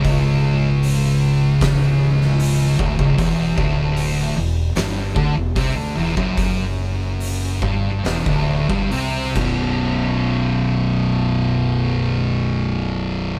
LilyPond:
<<
  \new Staff \with { instrumentName = "Distorted electric guitar" } { \clef bass \time 4/4 \key b \minor \tempo 4 = 73 cis,2.~ cis,8 d,16 cis,16 | e,8 d,4 e,8 g,8 d16 e,16 c16 d16 e,16 fis,16~ | fis,4. g,8 e,16 d,8 g,16 c8 <b,, fis, b,>8~ | <b,, fis, b,>1 | }
  \new Staff \with { instrumentName = "Distorted electric guitar" } { \clef bass \time 4/4 \key b \minor cis,2.~ cis,8 d,16 cis,16 | e,8 d,4 e,8 g,8 d16 e,16 c16 d16 e,16 fis,16~ | fis,4. g,8 e,16 d,8 g,16 c8 <b,, fis, b,>8~ | <b,, fis, b,>1 | }
  \new Staff \with { instrumentName = "Fingered electric bass" } { \clef bass \time 4/4 \key b \minor cis,,2.~ cis,,8 d,,16 cis,,16 | e,,8 d,,4 e,,8 g,,8 d,16 e,,16 c,16 d,16 e,,16 r16 | r4. g,,8 e,,16 d,,8 g,,16 c,8 b,,,8~ | b,,,1 | }
  \new DrumStaff \with { instrumentName = "Drums" } \drummode { \time 4/4 <hho bd>4 hho4 <hho bd sn>8. sn16 hho8 bd16 bd16 | <hho bd>8 bd8 hho4 <hho sn>8 bd8 <hho bd>8. bd16 | <hho bd>4 hho8 bd8 <hho sn>16 bd8 bd16 hho8 <cymc bd>8 | r4 r4 r4 r4 | }
>>